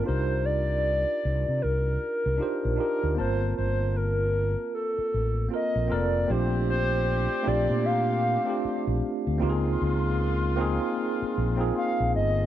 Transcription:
X:1
M:4/4
L:1/16
Q:"Swing 16ths" 1/4=77
K:Bb
V:1 name="Soft synth lead"
c2 d6 B6 B2 | c2 c2 B4 A4 e2 d2 | c2 c4 d2 f6 z2 | z12 f2 e2 |]
V:2 name="Tine electric piano"
[DEFGB]6- [DEFGB] z4 z [DEFGc]2 [DEFGB]2 | [B,CFBa]6- [B,CFBa] z4 z [B,CFAB]2 [B,CFAB]2 | [A,CDFG]4- [A,CDFG] z [A,CDFG]4- [A,CDFG] [A,CDFG]4- [A,CDFG] | [B,CEFG_A]4- [B,CEFGA] z [B,CEFA]4- [B,CEFA] [B,CEFA]4- [B,CEFA] |]
V:3 name="Saxophone section"
z16 | z16 | [CDG]12- [CDG]2 z2 | [_A,B,F]12- [A,B,F]2 z2 |]
V:4 name="Fretless electric bass" clef=bass
C,,4- C,, z C,, C, C,,2 z C,, z B,,, z D,, | G,,,2 G,,,4- G,,, z3 A,,,2 z B,,, F,,,2 | B,,,4- B,,, z B,,, B,,4 z2 B,,, z D,, | _D,,2 D,,4- D,, z3 B,,,2 z B,,, G,,,2 |]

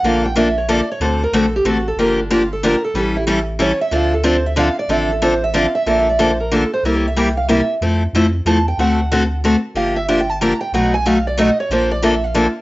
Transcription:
X:1
M:3/4
L:1/16
Q:"Swing" 1/4=185
K:Dm
V:1 name="Steel-string acoustic guitar"
f2 g2 e2 ^c2 d2 c2 | c2 B2 A2 G2 ^F2 A2 | B2 D2 F2 A2 B2 A2 | G2 E2 z4 ^c2 e2 |
f2 A2 c2 e2 f2 d2 | e2 A2 c2 e2 f2 e2 | (3d2 e2 d2 c2 B2 A2 c2 | (3B2 ^c2 e2 g2 f2 e3 z |
z8 a2 g2 | ^f8 z4 | f2 e2 (3f2 g2 a2 b2 g2 | ^f2 ^g2 =f2 d2 ^d2 ^c2 |
c2 d2 e2 f6 |]
V:2 name="Steel-string acoustic guitar"
[D,F,B,DA]2 z2 [D,F,B,DA]2 z2 [D,F,B,DA]2 z2 | [D,A,C^FA]2 z2 [D,A,CFA]2 z2 [D,A,CFA]2 z2 | [D,F,B,DG]2 z2 [D,F,B,DG]2 z2 [D,F,B,DG]2 z2 | [E,G,^CEA]2 z2 [E,G,CEA]2 z2 [E,G,CEA]2 z2 |
[D,F,CDA]2 z2 [D,F,CDA]2 z2 [D,F,CDA]2 z2 | [D,F,CDA]2 z2 [D,F,CDA]2 z2 [D,F,CDA]2 z2 | [D,F,B,DA]2 z2 [D,F,B,DA]2 z2 [D,F,B,DA]2 z2 | [C,G,B,EG]2 z2 [C,G,B,EG]2 z2 [C,G,B,EG]2 z2 |
[F,A,CEA]2 z2 [F,A,CEA]2 z2 [F,A,CEA]2 z2 | [D,A,C^FA]2 z2 [D,A,CFA]2 z2 [D,A,CFA]2 z2 | [D,F,B,DG]2 z2 [D,F,B,DG]2 z2 [D,F,B,DG]2 z2 | [=B,,^F,A,^D^F]2 z2 [B,,F,A,DF]2 z2 [B,,F,A,DF]2 z2 |
[D,F,B,DA]2 z2 [D,F,B,DA]2 z2 [D,F,B,DA]2 z2 |]
V:3 name="Analog synth bass" clef=bass
B,,,12 | D,,4 B,,,4 A,,,4 | G,,,12 | A,,,12 |
D,,12 | A,,,12 | B,,,12 | C,,12 |
F,,4 F,,4 E,,4 | D,,12 | G,,,12 | =B,,,12 |
B,,,12 |]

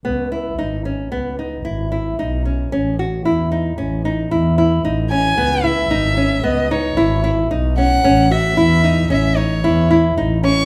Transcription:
X:1
M:5/4
L:1/8
Q:1/4=113
K:C#m
V:1 name="Violin"
z8 z2 | z8 z g- | g e3 d c2 z2 f- | f e3 e c2 z2 c' |]
V:2 name="Nylon-string guitar"
B, E D C B, D E E D C | C F E D C D E E D C | B, E D C B, D E E D C | C F E D C D E E D C |]
V:3 name="Double bass" clef=bass
C,,2 G,,,2 C,,2 G,,,2 B,,,2 | A,,,2 E,,2 A,,,2 E,,2 A,,,2 | C,,2 G,,,2 C,,2 G,,,2 B,,,2 | A,,,2 E,,2 A,,,2 E,,2 A,,,2 |]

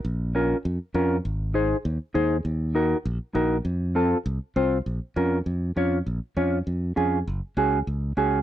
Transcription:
X:1
M:4/4
L:1/8
Q:1/4=199
K:Bbm
V:1 name="Clean electric guitar"
z2 [DFB] z3 [DFB] z | z2 [EAc] z3 [EAc] z | z2 [EGB] z3 [EGB] z | z2 [CF=A] z3 [CFc] z |
z2 [DFB] z3 [DFd] z | z2 [DFd] z3 [DFA] z | z2 [DGA] z3 [DGA] z |]
V:2 name="Fingered electric bass" clef=bass
B,,,4 F,, z F,,2 | A,,,4 E,, z E,,2 | E,,4 B,,, z B,,,2 | F,,4 C,, z C,,2 |
B,,, z F,,2 F,,2 F,,2 | B,,, z F,,2 F,,2 F,,2 | G,,, z D,,2 D,,2 D,,2 |]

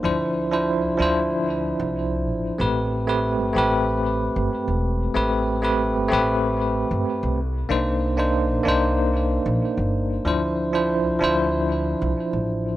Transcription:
X:1
M:4/4
L:1/16
Q:1/4=94
K:Am
V:1 name="Tine electric piano"
[F,DEc]3 [F,DEc]3 [F,DEc]8- [F,DEc]2 | [A,CGB]3 [A,CGB]3 [A,CGB]8- [A,CGB]2 | [A,CGB]3 [A,CGB]3 [A,CGB]8 z2 | [_B,D_Ec]3 [B,DEc]3 [B,DEc]8- [B,DEc]2 |
[F,DEc]3 [F,DEc]3 [F,DEc]8- [F,DEc]2 |]
V:2 name="Upright bass" clef=bass
D,,4- D,, C,, D,,4 z C,,3 A,,, z | A,,,4- A,,, G,,, A,,,4 z G,,, z E,,,2 z | A,,,4- A,,, G,,, A,,,4 z G,,, z C,,2 z | C,,4- C,, _B,,, C,,4 z B,,, z G,,,2 z |
D,,4- D,, C,, D,,4 z C,, z A,,,2 z |]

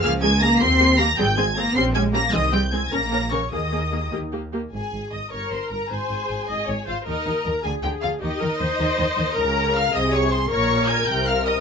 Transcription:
X:1
M:6/8
L:1/8
Q:3/8=104
K:Ab
V:1 name="Violin section"
f' a' b' c''2 b' | g' a' b' c'' a' b' | e' g' a' b'2 d' | e'3 z3 |
a2 e' d' c' b | a4- a f | e2 b a g f | e6 |
b2 f' e' d' c' | d'2 a' g' f' e' |]
V:2 name="Violin section"
f a b c'2 b | g a b c' a b | e g a b2 d | e3 z3 |
A2 e d c B | A4- A F | E2 B A G F | E6 |
B2 f e d c | d2 a g f e |]
V:3 name="Viola section"
[B,A] [B,A] [B,A] [B,G] [B,G] [B,G] | [CA] [CA] [CA] [DG] [DG] [DG] | [CA] [CA] [CA] [DB] [DB] [DB] | [B,A] [B,A] [B,A] [B,G] [B,G] [B,G] |
z3 B3 | c3 e d c | B3 A3 | G B c4 |
B3 A3 | B6 |]
V:4 name="Cello section" clef=bass
F, A, B, C2 B, | G, A, B, C A, B, | E, G, A, B,2 D, | E,3 z3 |
A,, A,, A,, G,, G,, G,, | A,, A,, A,, A,, A,, A,, | E, E, E, =D, D, D, | E, E, E, E, E, E, |
D,3 C,3 | B,,3 C,3 |]
V:5 name="Double bass section" clef=bass
D,,3 E,,3 | A,,,3 B,,,3 | C,,3 B,,,3 | E,,3 E,,3 |
A,,, A,,, A,,, G,,, G,,, G,,, | A,,, A,,, A,,, A,,, A,,, A,,, | E,, E,, E,, =D,, D,, D,, | E,, E,, E,, E,, E,, E,, |
D,,3 C,,3 | B,,,3 C,,3 |]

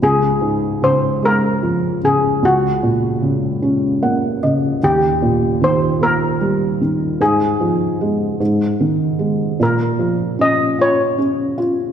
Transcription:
X:1
M:6/8
L:1/8
Q:3/8=50
K:Db
V:1 name="Steel pan"
A2 c B2 A | G2 z4 | =G2 c B3 | A4- A z |
B2 e d3 |]
V:2 name="Felt piano" clef=bass
D,, A,, D, A, F, D, | D,, B,, D, D [B,g] [D,e] | E,, B,, E, B, =G, E, | A,, F, A, A,, E, A, |
B,, F, D F D F |]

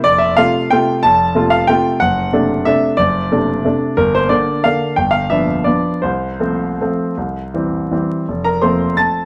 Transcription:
X:1
M:3/4
L:1/8
Q:1/4=177
K:F
V:1 name="Grand piano"
d e f2 g2 | a3 f g2 | ^f4 e2 | d6 |
B c d2 f2 | g f e2 d2 | c6- | c4 z2 |
z [Bb] [cc']2 [aa']2 |]
V:2 name="Grand piano"
F,,,2 [C,A,F]2 [C,A,F]2 | F,,,2 [C,A,F]2 [C,A,F]2 | ^F,,,2 [C,A,D]2 [C,A,D]2 | ^F,,,2 [C,A,D]2 [C,A,D]2 |
G,,,2 [D,B,D]2 [D,B,D]2 | G,,,2 [F,=B,D]2 [F,B,D]2 | C,,2 [F,A,C]2 [F,A,C]2 | C,,2 [E,G,C]2 [E,G,C]2 |
F,,,2 [F,A,C]4 |]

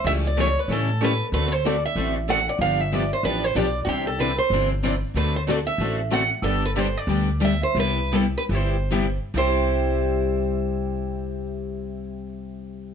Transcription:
X:1
M:4/4
L:1/16
Q:"Swing" 1/4=188
K:C
V:1 name="Steel-string acoustic guitar"
e2 d2 ^c2 B2 A4 B3 z | B3/2 B/2 c2 d2 e4 z2 ^f2 d2 | f2 e2 d2 c2 B2 c2 d3 z/2 ^F/2 | G2 A2 B2 c4 z2 d2 z2 |
B2 c2 d2 e4 z2 ^f2 z2 | A2 B2 c2 d6 e2 c2 | B4 A2 B2 c6 z2 | c16- |
c16 |]
V:2 name="Steel-string acoustic guitar"
[^C,G,^CEA^c]2 z2 [C,G,CEAc]2 z2 [C,G,CEAc]2 z2 [C,G,CEAc]2 z2 | [D,A,C^FA]2 z2 [D,A,CFA]2 z2 [D,A,CFA]2 z2 [D,A,CFA]2 z2 | [D,F,B,DG]2 z2 [D,F,B,DG]2 z2 [D,F,B,DG]2 z2 [D,F,B,DG]2 z2 | [C,D,G,CEc]2 z2 [C,D,G,CEc]2 z2 [C,D,G,CEc]2 z2 [C,D,G,CEc]2 z2 |
[D,A,C^FA]2 z2 [D,A,CFA]2 z2 [D,A,CFA]2 z2 [D,A,CFA]2 z2 | [D,G,B,DG]2 z2 [D,G,B,DG]2 z2 [D,G,B,DG]2 z2 [D,G,B,DG]2 z2 | [C,G,B,EG]2 z2 [C,G,B,EG]2 z2 [C,G,B,EG]2 z2 [C,G,B,EG]2 z2 | [C,G,EG]16- |
[C,G,EG]16 |]
V:3 name="Steel-string acoustic guitar"
[^C,E,A,^CG]2 z2 [C,E,A,CG]2 z2 [C,E,A,CG]2 z2 [C,E,A,CG]2 z2 | [D,A,C^FA]2 z2 [D,A,CFA]2 z2 [D,A,CFA]2 z2 [D,A,CFA]2 z2 | [D,F,B,DG]2 z2 [D,F,B,DG]2 z2 [D,F,B,DG]2 z2 [D,F,B,DG]2 z2 | [C,E,CD]2 z2 [C,E,CD]2 z2 [C,E,CD]2 z2 [C,E,CD]2 z2 |
[D,A,C^FA]2 z2 [D,A,CFA]2 z2 [D,A,CFA]2 z2 [D,A,CFA]2 z2 | [D,G,B,DG]2 z2 [D,G,B,DG]2 z2 [D,G,B,DG]2 z2 [D,G,B,DG]2 z2 | [C,G,B,EG]2 z2 [C,G,B,EG]2 z2 [C,G,B,EG]2 z2 [C,G,B,EG]2 z2 | [C,G,EG]16- |
[C,G,EG]16 |]
V:4 name="Upright bass" clef=bass
^C,,8 A,,8 | D,,8 A,,,8 | G,,,8 A,,,4 B,,,4 | C,,8 G,,,8 |
D,,8 A,,,8 | G,,,8 D,,8 | C,,8 G,,,8 | C,,16- |
C,,16 |]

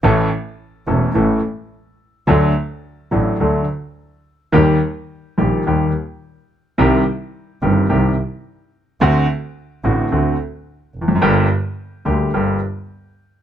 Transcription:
X:1
M:4/4
L:1/16
Q:1/4=107
K:Dphr
V:1 name="Grand piano" clef=bass
[A,,,A,,=E,A,^CA]2 z4 [=E,,,=E,,E,A,CA]2 [A,,,A,,E,A,CA]2 z6 | [D,,D,^F,A,DA]2 z4 [A,,,A,,F,A,DA]2 [D,,D,F,A,DA]2 z6 | [E,,E,G,B,G]2 z4 [B,,,B,,E,G,B,G]2 [E,,E,G,B,G]2 z6 | [C,,C,E,G,CG]2 z4 [G,,,G,,E,G,CG]2 [C,,C,E,G,CG]2 z6 |
[D,,D,A,C^F]2 z4 [A,,,A,,D,A,CF]2 [D,,D,A,CF]2 z4 z/2 =E,,/2 =F,,/2 ^F,,/2 | [G,,,G,,D,G,B,G]2 z4 [D,,D,G,B,G]2 [G,,,G,,D,G,B,G]2 z6 |]
V:2 name="Double bass" clef=bass
A,,,2 z4 =E,,,2 A,,,2 z6 | D,,2 z4 A,,,2 D,,2 z6 | E,,2 z4 B,,,2 E,,2 z6 | C,,2 z4 G,,,2 C,,2 z6 |
D,,2 z4 A,,,2 D,,2 z4 F,,,2 | G,,,2 z4 D,,2 G,,,2 z6 |]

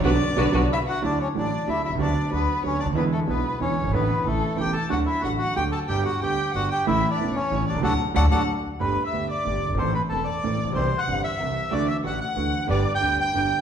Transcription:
X:1
M:3/4
L:1/16
Q:1/4=185
K:Bm
V:1 name="Violin"
d8 e2 f2 | [K:D] d2 c2 d4 e2 e2 | d4 B4 c2 d2 | B2 A2 B4 c4 |
B4 A4 g2 a2 | f2 e2 f2 f2 g2 a2 | g2 f2 g4 f2 g2 | e3 d3 c4 d2 |
f2 z2 f2 f2 z4 | [K:G] B3 e3 d6 | c2 B2 A2 d6 | c3 f3 e6 |
d2 e2 f2 f6 | d3 g3 g6 |]
V:2 name="String section"
[DFB]2 z2 [DFB]2 [DFB]2 z4 | [K:D] z12 | z12 | z12 |
z12 | z12 | z12 | z12 |
z12 | [K:G] z12 | z12 | z12 |
z12 | [DGB]2 z2 [DGB]2 z2 [DGB]2 z2 |]
V:3 name="Bandoneon"
z8 E2 F2 | [K:D] D2 C2 D4 E2 E2 | D4 B,4 C2 D2 | B,2 A,2 B,4 C4 |
B,4 A,4 G2 A2 | F2 E2 F2 F2 G2 A2 | G2 F2 G4 F2 G2 | E3 D3 C4 D2 |
[DFA]2 z2 [DFA]2 [DFA]2 z4 | [K:G] B3 e3 d6 | c2 B2 A2 d6 | c3 f3 e6 |
d2 e2 f2 f6 | d3 g3 g6 |]
V:4 name="Grand piano" clef=bass
[D,F,B,]2 z2 [D,F,B,]2 [D,F,B,]2 z4 | [K:D] [D,,D,F,A,E]2 z2 [A,,,A,,D,F,A,E]2 z2 [D,,D,F,A,E]2 z/2 B,,,/2 =C,,/2 ^C,,/2 | [D,,D,F,B,F]2 z2 [D,,D,F,B,F]2 z2 [D,,D,F,B,F]2 z/2 C,,/2 D,,/2 _E,,/2 | [E,,D,E,^G,B,E]2 z2 [B,,,B,,D,G,B,E]2 z2 [E,,D,E,G,B,E]2 z/2 F,,,/2 =G,,,/2 ^G,,,/2 |
[A,,,A,,D,E,A,E]2 z2 [A,,,A,,C,E,A,E]2 z2 [E,,,E,,C,E,A,E]2 z2 | [D,,D,F,A,F]2 z2 [A,,,A,,D,F,A,F]2 z2 [D,,D,F,A,F]2 z2 | [G,,,G,,D,G,B,G]2 z2 [D,,D,G,B,G]2 z2 [G,,,G,,D,G,B,G]2 z2 | [A,,,A,,C,E,A,E]2 z2 [E,,,E,,C,E,A,E]2 z2 [A,,,A,,C,E,A,E]2 z/2 B,,,/2 =C,,/2 ^C,,/2 |
[A,,D,F,]2 z2 [A,,D,F,]2 [A,,D,F,]2 z4 | [K:G] [G,,,G,,D,A,B,G]2 z2 [D,,D,A,B,G]2 z2 [G,,,G,,D,A,B,G]2 z/2 F,,,/2 G,,,/2 _A,,,/2 | [A,,,A,,E,A,CA]2 z2 [E,,,E,,E,A,CA]2 z2 [A,,,A,,E,A,CA]2 z/2 A,,,/2 _B,,,/2 =B,,,/2 | [C,,C,E,G,CG]2 z2 [G,,,G,,E,G,CG]2 z2 [C,,C,E,G,CG]2 z2 |
[D,,D,E,A,DF]2 z2 [A,,,A,,E,A,DF]2 z2 [D,,D,E,A,DF]2 z2 | [G,,,G,,D,G,B,G]2 z2 [D,,D,G,B,G]2 z2 [G,,,G,,D,G,B,G]2 z2 |]
V:5 name="Upright bass" clef=bass
B,,,3/2 z2 z/2 B,,,3/2 z/2 B,,,3/2 z4 z/2 | [K:D] D,,3/2 z2 z/2 A,,,3/2 z2 z/2 D,,3/2 z B,,,/2 =C,,/2 ^C,,/2 | D,,3/2 z2 z/2 D,,3/2 z2 z/2 D,,3/2 z C,,/2 D,,/2 _E,,/2 | E,,3/2 z2 z/2 B,,,3/2 z2 z/2 E,,3/2 z F,,,/2 G,,,/2 ^G,,,/2 |
A,,,3/2 z2 z/2 A,,,3/2 z2 z/2 E,,,3/2 z2 z/2 | D,,3/2 z2 z/2 A,,,3/2 z2 z/2 D,,3/2 z2 z/2 | G,,,3/2 z2 z/2 D,,3/2 z2 z/2 G,,,3/2 z2 z/2 | A,,,3/2 z2 z/2 E,,,3/2 z2 z/2 A,,,3/2 z B,,,/2 =C,,/2 ^C,,/2 |
D,,3/2 z2 z/2 D,,3/2 z/2 D,,3/2 z4 z/2 | [K:G] G,,,3/2 z2 z/2 D,,3/2 z2 z/2 G,,,3/2 z F,,,/2 G,,,/2 _A,,,/2 | A,,,3/2 z2 z/2 E,,,3/2 z2 z/2 A,,,3/2 z A,,,/2 _B,,,/2 =B,,,/2 | C,,3/2 z2 z/2 G,,,3/2 z2 z/2 C,,3/2 z2 z/2 |
D,,3/2 z2 z/2 A,,,3/2 z2 z/2 D,,3/2 z2 z/2 | G,,,3/2 z2 z/2 D,,3/2 z2 z/2 G,,,3/2 z2 z/2 |]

